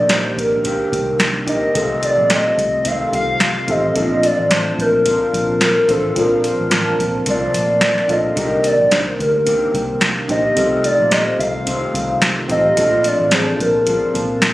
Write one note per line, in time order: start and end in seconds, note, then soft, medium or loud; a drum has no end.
0.00 0.76 A#1 medium
0.00 0.64 C3 medium
0.00 0.63 D#3 medium
0.00 0.64 A#3 medium
0.00 0.65 C4 medium
0.00 0.08 D4 medium
0.00 0.09 D#4 medium
0.00 0.10 G4 medium
0.00 0.65 G4 medium
0.00 0.11 A#4 medium
0.00 0.13 D5 loud
0.08 1.04 D4 medium
0.08 1.04 D#4 medium
0.08 1.04 G4 medium
0.08 1.05 A#4 medium
0.08 0.40 C5 medium
0.08 snare medium
0.08 closed hi-hat medium
0.37 1.21 A#4 medium
0.37 kick medium
0.37 closed hi-hat medium
0.64 1.75 D#3 medium
0.64 1.48 A#3 soft
0.64 1.47 C4 medium
0.64 1.45 G4 medium
0.64 kick medium
0.64 closed hi-hat medium
0.92 1.47 C2 medium
0.92 kick medium
0.92 closed hi-hat medium
1.20 snare loud
1.20 closed hi-hat medium
1.46 1.70 A#1 medium
1.46 1.76 A#3 soft
1.46 1.75 C4 soft
1.46 1.71 D4 medium
1.46 1.71 D#4 medium
1.46 1.75 G4 medium
1.46 1.71 G4 medium
1.46 1.72 A#4 medium
1.46 2.06 D#5 loud
1.46 kick medium
1.46 closed hi-hat medium
1.73 2.09 C2 medium
1.73 2.85 C3 medium
1.73 2.84 D#3 medium
1.73 2.86 A3 medium
1.73 2.22 C4 medium
1.73 2.22 D#4 medium
1.73 2.23 G4 medium
1.73 2.23 A4 medium
1.73 kick loud
1.73 closed hi-hat loud
1.77 2.86 C4 medium
1.77 2.87 F4 medium
2.03 2.34 D5 medium
2.03 closed hi-hat medium
2.18 2.50 A#1 medium
2.28 3.24 C4 medium
2.28 3.25 D#4 medium
2.28 3.25 G4 medium
2.28 3.25 A4 medium
2.28 2.89 D#5 loud
2.28 snare medium
2.28 closed hi-hat medium
2.58 2.92 C2 medium
2.58 kick medium
2.58 closed hi-hat medium
2.85 3.68 D#3 medium
2.85 3.70 A3 medium
2.85 3.68 C4 medium
2.85 3.67 F4 medium
2.85 3.14 F5 loud
2.85 kick medium
2.85 closed hi-hat medium
3.12 3.57 C2 medium
3.12 3.72 F5 medium
3.12 kick medium
3.12 closed hi-hat medium
3.40 snare medium
3.40 closed hi-hat medium
3.67 3.90 A1 medium
3.67 3.95 A3 soft
3.67 3.91 C4 medium
3.67 3.96 C4 medium
3.67 3.92 D#4 medium
3.67 3.95 F4 medium
3.67 3.92 G4 medium
3.67 3.93 A4 medium
3.67 4.27 D#5 loud
3.67 kick medium
3.67 closed hi-hat medium
3.94 4.30 A#1 loud
3.94 5.04 F3 medium
3.94 5.06 A3 medium
3.94 4.42 C4 medium
3.94 4.43 D4 medium
3.94 5.06 D4 medium
3.94 4.43 F4 medium
3.94 4.44 A4 medium
3.94 kick loud
3.94 closed hi-hat medium
3.98 5.06 F4 medium
4.23 4.52 D5 loud
4.23 closed hi-hat medium
4.38 4.70 A1 medium
4.49 5.45 C4 medium
4.49 5.45 D4 medium
4.49 5.46 F4 medium
4.49 5.46 A5 medium
4.49 snare medium
4.49 closed hi-hat medium
4.53 4.83 C5 medium
4.79 5.13 A#1 medium
4.79 5.62 A#4 loud
4.79 kick medium
4.79 closed hi-hat medium
5.05 5.88 F3 medium
5.05 5.89 D4 medium
5.05 5.87 F4 medium
5.05 kick medium
5.05 closed hi-hat medium
5.33 5.78 A#1 medium
5.33 kick medium
5.33 closed hi-hat medium
5.61 5.92 A#4 medium
5.61 snare medium
5.61 closed hi-hat medium
5.88 6.11 A1 medium
5.88 6.17 A3 soft
5.88 6.12 C4 medium
5.88 6.12 D4 medium
5.88 6.17 D4 soft
5.88 6.16 F4 medium
5.88 6.13 F4 medium
5.88 6.21 A4 medium
5.88 6.13 C5 medium
5.88 kick medium
5.88 closed hi-hat medium
6.15 6.50 A#1 medium
6.15 7.25 F3 medium
6.15 6.63 C4 medium
6.15 6.64 D4 medium
6.15 7.26 D4 medium
6.15 6.64 F4 medium
6.15 6.64 A#4 medium
6.15 kick loud
6.15 closed hi-hat medium
6.19 7.27 F4 medium
6.19 7.28 A#4 loud
6.44 closed hi-hat medium
6.59 6.91 A1 medium
6.70 7.65 C4 medium
6.70 7.66 D4 medium
6.70 7.66 F4 medium
6.70 7.66 A5 medium
6.70 snare loud
6.70 closed hi-hat medium
6.99 7.21 A#1 medium
6.99 kick medium
6.99 closed hi-hat medium
7.26 7.49 C2 medium
7.26 8.09 F3 medium
7.26 8.09 A3 medium
7.26 8.09 D4 medium
7.26 8.07 F4 medium
7.26 8.13 D5 medium
7.26 kick medium
7.26 closed hi-hat medium
7.54 7.98 A#1 medium
7.54 closed hi-hat medium
7.81 snare medium
7.81 closed hi-hat medium
7.98 snare soft
8.07 8.31 A#1 medium
8.07 8.32 C4 medium
8.07 8.32 D4 medium
8.07 8.37 D4 soft
8.07 8.36 F4 medium
8.07 8.33 F4 medium
8.07 8.33 A4 medium
8.07 8.68 D#5 loud
8.07 kick medium
8.07 closed hi-hat medium
8.11 8.37 A3 soft
8.35 8.71 C2 medium
8.35 9.46 C3 medium
8.35 9.46 D#3 medium
8.35 9.46 A#3 medium
8.35 9.48 C4 medium
8.35 8.83 D4 medium
8.35 8.84 D#4 medium
8.35 8.84 G4 medium
8.35 8.85 A#4 medium
8.35 kick loud
8.35 closed hi-hat medium
8.39 9.47 G4 medium
8.64 8.95 D5 medium
8.64 closed hi-hat medium
8.79 8.89 A#1 medium
8.91 9.13 C2 medium
8.91 9.86 D4 medium
8.91 9.86 D#4 medium
8.91 9.87 G4 medium
8.91 9.87 A#4 medium
8.91 9.22 C5 medium
8.91 snare loud
8.91 closed hi-hat medium
9.19 9.53 D2 medium
9.19 10.03 A#4 medium
9.19 kick medium
9.19 closed hi-hat medium
9.46 10.56 D#3 medium
9.46 10.29 A#3 medium
9.46 10.29 C4 medium
9.46 10.27 G4 medium
9.46 kick medium
9.46 closed hi-hat medium
9.74 10.18 C2 medium
9.74 kick medium
9.74 closed hi-hat medium
10.01 snare medium
10.01 closed hi-hat medium
10.28 10.51 A#1 medium
10.28 10.57 A#3 soft
10.28 10.57 C4 soft
10.28 10.52 D4 medium
10.28 10.53 D#4 medium
10.28 10.56 G4 medium
10.28 10.53 G4 medium
10.28 10.54 C5 medium
10.28 10.86 D#5 loud
10.28 kick medium
10.28 closed hi-hat medium
10.54 10.91 C2 loud
10.54 11.66 C3 medium
10.54 11.65 D#3 medium
10.54 11.67 A3 medium
10.54 11.03 C4 medium
10.54 11.67 C4 medium
10.54 11.04 D#4 medium
10.54 11.04 G4 medium
10.54 11.04 A4 medium
10.54 kick loud
10.54 closed hi-hat medium
10.59 11.68 F4 medium
10.84 11.13 D5 medium
10.84 closed hi-hat medium
10.99 11.31 A#1 medium
11.10 12.06 C4 medium
11.10 12.06 D#4 medium
11.10 12.07 G4 medium
11.10 12.07 C5 medium
11.10 11.41 D#5 loud
11.10 snare medium
11.10 closed hi-hat medium
11.39 11.73 C2 medium
11.39 12.22 F5 medium
11.39 kick medium
11.39 closed hi-hat medium
11.66 12.49 D#3 medium
11.66 12.51 A3 medium
11.66 12.49 C4 medium
11.66 12.48 F4 medium
11.66 kick medium
11.66 closed hi-hat medium
11.94 12.38 C2 medium
11.94 kick medium
11.94 closed hi-hat medium
12.22 snare medium
12.22 closed hi-hat medium
12.48 12.71 A1 medium
12.48 12.77 A3 soft
12.48 12.73 C4 medium
12.48 12.77 C4 soft
12.48 12.73 D#4 medium
12.48 12.77 F4 medium
12.48 12.73 G4 medium
12.48 12.74 A4 medium
12.48 13.08 D#5 loud
12.48 kick medium
12.48 closed hi-hat medium
12.75 13.11 A#1 loud
12.75 13.85 F3 medium
12.75 13.88 A3 medium
12.75 13.24 C4 medium
12.75 13.24 D4 medium
12.75 13.87 D4 medium
12.75 13.25 F4 medium
12.75 13.25 A4 medium
12.75 kick loud
12.75 closed hi-hat medium
12.80 13.87 F4 medium
13.04 13.35 D5 medium
13.04 closed hi-hat medium
13.19 13.51 A1 medium
13.31 14.26 C4 medium
13.31 14.26 D4 medium
13.31 14.27 F4 medium
13.31 13.40 G#4 medium
13.31 13.63 C5 loud
13.31 snare loud
13.31 closed hi-hat medium
13.40 14.30 A5 medium
13.59 13.94 A#1 medium
13.59 14.43 A#4 medium
13.59 kick medium
13.59 closed hi-hat medium
13.86 14.53 F3 medium
13.86 14.53 D4 medium
13.86 14.53 F4 medium
13.86 kick medium
13.86 closed hi-hat medium
14.14 14.53 A#1 medium
14.14 kick medium
14.14 closed hi-hat medium
14.42 snare medium
14.42 closed hi-hat medium